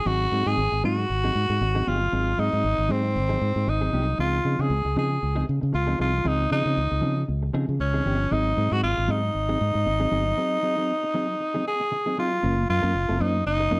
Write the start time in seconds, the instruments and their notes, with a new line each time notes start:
0.06 fingered electric bass G#1, clean electric guitar F#3 C4 D#4 G#4, tenor saxophone F#4
0.32 fingered electric bass G#2, clean electric guitar F#3 C4 D#4 G#4
0.46 fingered electric bass G#2, clean electric guitar F#3 C4 D#4 G#4, tenor saxophone G#4
0.58 fingered electric bass G#1
0.72 fingered electric bass G#1, muted clean electric guitar stroke
0.84 fingered electric bass G#2, clean electric guitar F#3 C4 D#4 G#4, tenor saxophone F#4
0.98 muted clean electric guitar stroke
1.09 fingered electric bass G#1, muted clean electric guitar stroke
1.24 clean electric guitar F#3 C4 D#4 G#4
1.35 fingered electric bass G#2
1.50 fingered electric bass G#2, muted clean electric guitar stroke
1.61 fingered electric bass G#1, muted clean electric guitar stroke
1.75 clean electric guitar F#3 C4 D#4 G#4
1.86 fingered electric bass G1, clean electric guitar F#3 C4 D#4 G#4, tenor saxophone F4
2.01 muted clean electric guitar stroke
2.12 fingered electric bass G#1, clean electric guitar F#3 C4 D#4 G#4
2.37 fingered electric bass G#2, clean electric guitar F#3 C4 D#4 G#4, tenor saxophone D#4
2.52 fingered electric bass G#2, clean electric guitar F#3 C4 D#4 G#4
2.64 fingered electric bass G#1
2.78 fingered electric bass G#1, muted clean electric guitar stroke
2.89 fingered electric bass G#2, clean electric guitar F#3 C4 D#4 G#4, tenor saxophone C4
3.04 muted clean electric guitar stroke
3.15 fingered electric bass G#1, muted clean electric guitar stroke
3.29 clean electric guitar F#3 C4 D#4 G#4
3.41 fingered electric bass G#2, muted clean electric guitar stroke
3.56 fingered electric bass G#2, muted clean electric guitar stroke
3.67 fingered electric bass G#1, tenor saxophone D#4, muted clean electric guitar stroke
3.81 clean electric guitar F#3 C4 D#4 G#4
3.93 fingered electric bass C2, clean electric guitar F#3 C4 D#4 G#4
4.08 muted clean electric guitar stroke
4.18 fingered electric bass C#2, clean electric guitar F3 C4 D#4 G#4, tenor saxophone F4
4.45 fingered electric bass C#3, clean electric guitar F3 C4 D#4 G#4
4.59 fingered electric bass C#3, clean electric guitar F3 C4 D#4 G#4, tenor saxophone G#4
4.70 fingered electric bass C#2
4.85 fingered electric bass C#2, muted clean electric guitar stroke
4.96 fingered electric bass C#3, clean electric guitar F3 C4 D#4 G#4, tenor saxophone G#4
5.11 muted clean electric guitar stroke
5.22 fingered electric bass C#2, muted clean electric guitar stroke
5.36 clean electric guitar F3 C4 D#4 G#4
5.48 fingered electric bass C#3, muted clean electric guitar stroke
5.61 fingered electric bass C#3, muted clean electric guitar stroke
5.73 fingered electric bass C#2, tenor saxophone F4, muted clean electric guitar stroke
5.87 clean electric guitar F3 C4 D#4 G#4
5.99 fingered electric bass C2, clean electric guitar F3 C4 D#4 G#4, tenor saxophone F4
6.14 muted clean electric guitar stroke
6.24 fingered electric bass C#2, clean electric guitar F3 C4 D#4 G#4, tenor saxophone D#4
6.50 fingered electric bass C#3, clean electric guitar F3 C4 D#4 G#4, tenor saxophone D#4
6.65 fingered electric bass C#3, clean electric guitar F3 C4 D#4 G#4
6.77 fingered electric bass C#2
6.91 fingered electric bass C#2, muted clean electric guitar stroke
7.01 fingered electric bass C#3, clean electric guitar F3 C4 D#4 G#4
7.16 muted clean electric guitar stroke
7.28 fingered electric bass C#2, muted clean electric guitar stroke
7.43 muted clean electric guitar stroke
7.53 fingered electric bass C#3, clean electric guitar F3 C4 D#4 G#4
7.68 fingered electric bass C#3, muted clean electric guitar stroke
7.79 fingered electric bass C#2, tenor saxophone C#4, muted clean electric guitar stroke
7.94 clean electric guitar F3 C4 D#4 G#4
8.05 fingered electric bass G1, clean electric guitar F3 C4 D#4 G#4
8.19 muted clean electric guitar stroke
8.31 fingered electric bass G#1, clean electric guitar F#3 C4 D#4 G#4, tenor saxophone D#4
8.56 fingered electric bass G#2, clean electric guitar F#3 C4 D#4 G#4
8.72 fingered electric bass G#2, clean electric guitar F#3 C4 D#4 G#4, tenor saxophone F#4
8.83 fingered electric bass G#1, tenor saxophone F4
8.97 fingered electric bass G#1, muted clean electric guitar stroke
9.08 fingered electric bass G#2, clean electric guitar F#3 C4 D#4 G#4, tenor saxophone D#4
9.23 muted clean electric guitar stroke
9.35 fingered electric bass G#1, muted clean electric guitar stroke
9.49 clean electric guitar F#3 C4 D#4 G#4
9.61 fingered electric bass G#2
9.74 fingered electric bass G#2, muted clean electric guitar stroke
9.86 fingered electric bass G#1, muted clean electric guitar stroke
10.00 clean electric guitar F#3 C4 D#4 G#4
10.11 fingered electric bass G1, clean electric guitar F#3 C4 D#4 G#4
10.26 muted clean electric guitar stroke
10.37 clean electric guitar F#3 C4 D#4 G#4
10.63 clean electric guitar F#3 C4 D#4 G#4
10.77 clean electric guitar F#3 C4 D#4 G#4
11.04 muted clean electric guitar stroke
11.14 clean electric guitar F#3 C4 D#4 G#4
11.29 muted clean electric guitar stroke
11.40 muted clean electric guitar stroke
11.54 clean electric guitar F#3 C4 D#4 G#4
11.66 tenor saxophone G#4, muted clean electric guitar stroke
11.80 muted clean electric guitar stroke
11.92 muted clean electric guitar stroke
12.06 clean electric guitar F#3 C4 D#4 G#4
12.18 clean electric guitar F#3 C4 D#4 G#4, tenor saxophone F4
12.32 muted clean electric guitar stroke
12.43 fingered electric bass F#1, clean electric guitar A#3 C#4 F4 A#4
12.58 muted clean electric guitar stroke
12.68 fingered electric bass F#2, tenor saxophone F4, muted clean electric guitar stroke
12.82 fingered electric bass F#2, clean electric guitar A#3 C#4 F4 A#4
12.95 fingered electric bass F#1, muted clean electric guitar stroke
13.09 fingered electric bass F#1, clean electric guitar A#3 C#4 F4 A#4
13.20 fingered electric bass F#2, clean electric guitar A#3 C#4 F4 C5, tenor saxophone D#4
13.35 muted clean electric guitar stroke
13.46 fingered electric bass F#1, tenor saxophone D#4, muted clean electric guitar stroke
13.60 muted clean electric guitar stroke
13.71 fingered electric bass F#2, clean electric guitar A#3 C#4 F4 A#4